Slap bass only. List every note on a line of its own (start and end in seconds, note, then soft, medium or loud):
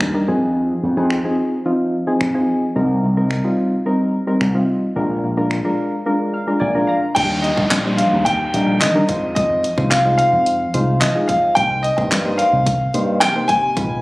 0.01 0.12 D#2 medium
0.28 0.72 F2 medium
0.83 0.94 F2 medium
0.97 1.19 F2 medium
2.21 2.43 F2 medium
2.76 2.98 C2 loud
3.03 3.14 C2 medium
3.17 3.39 C2 medium
4.41 4.63 C2 medium
4.96 5.18 A#1 medium
5.24 5.35 A#1 medium
5.37 5.59 A#1 medium
6.61 6.83 A#1 medium
7.16 7.49 D#2 loud
7.57 8.01 A#1 medium
8.13 8.45 D#2 medium
8.54 8.83 A#1 medium
8.81 9.03 D#3 medium
9.09 9.64 F2 loud
9.78 10.21 C2 medium
10.33 10.66 F2 medium
10.74 11.03 C2 medium
11.02 11.58 F3 medium
11.57 11.89 C2 loud
11.98 12.42 G2 medium
12.53 12.86 C2 medium
12.94 13.22 G2 medium
13.22 13.78 C3 medium
13.77 14.02 B1 loud